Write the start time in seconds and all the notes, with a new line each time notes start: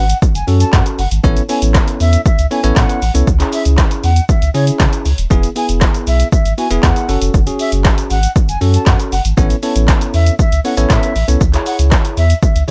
Already playing: G#1 F#5
0.10 closed hi-hat, shaker
0.22 kick, shaker
0.35 F#1 G#5, closed hi-hat, shaker
0.47 F#2 C#4 F#4 A4, open hi-hat, shaker
0.60 A5, closed hi-hat, shaker
0.73 F#2 F#5, kick, snare, clap, shaker
0.86 closed hi-hat, shaker
0.98 F#1 F#5, open hi-hat, shaker
1.11 G#1, closed hi-hat, shaker
1.24 A1 B3 C#4 E4 A4 C#5, kick, shaker
1.37 closed hi-hat, shaker
1.49 B3 C#4 E4 A4 C#5 G#5, open hi-hat, shaker
1.62 A1, closed hi-hat, shaker
1.75 kick, snare, clap, shaker
1.88 closed hi-hat, shaker
2.00 E2 E5, open hi-hat, shaker
2.13 closed hi-hat, shaker
2.26 E5, kick, shaker
2.38 C#2, closed hi-hat, shaker
2.51 B3 C#4 E4 A4 C#5 G#5, open hi-hat, shaker
2.63 A1 B3 C#4 E4 A4 C#5, closed hi-hat, shaker
2.76 A2 F#5, kick, snare, clap, shaker
2.89 closed hi-hat, shaker
3.02 A1, open hi-hat, shaker
3.14 C2 B3 C#4 E4 A4 C#5, closed hi-hat, shaker
3.27 C#2, kick, shaker
3.40 C#4 E4 G#4, clap, closed hi-hat, shaker
3.53 E5, open hi-hat, shaker
3.65 C#2, closed hi-hat, shaker
3.78 kick, snare, clap, shaker
3.91 closed hi-hat, shaker
4.04 E2 F#5, open hi-hat, shaker
4.16 closed hi-hat, shaker
4.29 E5, kick, shaker
4.42 C#2, closed hi-hat, shaker
4.54 C#3 C#4 E4 G#4 C#5, open hi-hat, shaker
4.67 closed hi-hat, shaker
4.80 C#3, kick, snare, clap, shaker
4.93 closed hi-hat, shaker
5.05 C#2, open hi-hat, shaker
5.18 D#1, closed hi-hat, shaker
5.30 E1 B3 E4 G#4, kick, shaker
5.43 closed hi-hat, shaker
5.56 B3 E4 G#4 G#5, open hi-hat, shaker
5.69 E1, closed hi-hat, shaker
5.81 kick, snare, clap, shaker
5.95 closed hi-hat, shaker
6.07 B1 E5, open hi-hat, shaker
6.20 closed hi-hat, shaker
6.32 E5, kick, shaker
6.45 G#1, closed hi-hat, shaker
6.58 B3 E4 F#4 G#5, open hi-hat, shaker
6.70 E1 B3 E4 G#4, closed hi-hat, shaker
6.83 E2 F#5, kick, snare, clap, shaker
6.96 closed hi-hat, shaker
7.08 F#1 C#4 F#4 A4, open hi-hat, shaker
7.21 F1, closed hi-hat, shaker
7.34 F#1, kick, shaker
7.47 C#4 F#4 G#4, closed hi-hat, shaker
7.59 E5, open hi-hat, shaker
7.72 F#1, closed hi-hat, shaker
7.85 kick, snare, clap, shaker
7.98 closed hi-hat, shaker
8.10 G#1 F#5, open hi-hat, shaker
8.23 closed hi-hat, shaker
8.36 kick, shaker
8.48 F#1 G#5, closed hi-hat, shaker
8.61 F#2 C#4 F#4 A4, open hi-hat, shaker
8.74 A5, closed hi-hat, shaker
8.86 F#2 F#5, kick, snare, clap, shaker
9.00 closed hi-hat, shaker
9.12 F#1 F#5, open hi-hat, shaker
9.25 G#1, closed hi-hat, shaker
9.37 A1 B3 C#4 E4 A4 C#5, kick, shaker
9.50 closed hi-hat, shaker
9.63 B3 C#4 E4 A4 C#5 A5, open hi-hat, shaker
9.76 A1, closed hi-hat, shaker
9.88 kick, snare, clap, shaker
10.01 closed hi-hat, shaker
10.14 E2 E5, open hi-hat, shaker
10.27 closed hi-hat, shaker
10.39 E5, kick, shaker
10.52 C#2, closed hi-hat, shaker
10.64 B3 C#4 E4 A4 C#5 F#5, open hi-hat, shaker
10.77 A1 B3 C#4 E4 A4 C#5, closed hi-hat, shaker
10.90 A2 E5, kick, snare, clap, shaker
11.03 closed hi-hat, shaker
11.15 A1, open hi-hat, shaker
11.28 C2 B3 C#4 E4 A4 C#5, closed hi-hat, shaker
11.41 C#2, kick, shaker
11.53 E4 G#4 C#5, clap, closed hi-hat, shaker
11.66 F#5, open hi-hat, shaker
11.79 C#2, closed hi-hat, shaker
11.92 kick, snare, clap, shaker
12.05 closed hi-hat, shaker
12.17 E2 E5, open hi-hat, shaker
12.30 closed hi-hat, shaker
12.42 E5, kick, shaker
12.55 C#2, closed hi-hat, shaker
12.68 E4